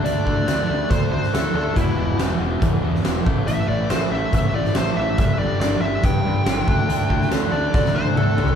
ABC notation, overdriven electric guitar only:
X:1
M:4/4
L:1/8
Q:1/4=140
K:Ddor
V:1 name="Overdriven electric guitar" clef=bass
[D,A,D] [D,A,D] [D,A,D] [D,A,D] [D,A,D] [D,A,D] [D,A,D] [D,A,D] | [E,,B,,E,] [E,,B,,E,] [E,,B,,E,] [E,,B,,E,] [E,,B,,E,] [E,,B,,E,] [E,,B,,E,] [A,,E,A,] | [A,,E,A,] [A,,E,A,] [A,,E,A,] [A,,E,A,] [A,,E,A,] [A,,E,A,] [A,,E,A,] [A,,E,A,] | [G,,D,G,] [G,,D,G,] [G,,D,G,] [G,,D,G,] [G,,D,G,] [G,,D,G,] [G,,D,G,] [D,A,D] |
[D,A,D] [D,A,D] [D,A,D] [D,A,D] [D,A,D] [D,A,D] [D,A,D] [D,A,D] |]